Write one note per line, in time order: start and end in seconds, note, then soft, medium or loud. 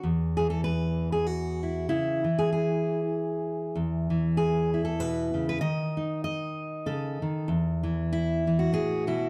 0.03 1.89 E2 medium
0.37 2.24 E3 soft
0.37 0.50 G#4 medium
0.50 0.64 A4 medium
0.64 1.12 B4 medium
1.12 1.26 G#4 medium
1.26 1.89 F#4 medium
1.63 1.89 E4 soft
1.89 2.24 C#3 medium
1.89 3.00 E4 medium
2.24 4.09 E3 soft
2.39 2.51 G#4 medium
2.53 3.76 G#4 medium
3.75 5.61 E2 medium
4.10 5.62 E3 soft
4.37 4.84 G#4 medium
4.74 5.59 E4 soft
4.85 5.00 A4 medium
5.00 5.33 B2 medium
5.00 5.48 B4 medium
5.34 5.61 C#3 soft
5.49 5.60 B4 medium
5.61 7.21 D#3 medium
5.61 6.23 D#5 medium
5.97 7.45 D#4 medium
6.24 7.48 D#5 medium
6.86 7.21 C#3 medium
6.86 7.49 A4 medium
7.22 7.49 D#3 medium
7.48 8.72 E2 medium
7.83 8.47 E3 medium
8.13 8.73 E4 medium
8.47 9.29 E3 soft
8.59 9.29 F#4 medium
8.72 9.08 A2 medium
8.72 9.07 G#4 medium
9.07 9.29 B2 medium
9.07 9.29 E4 medium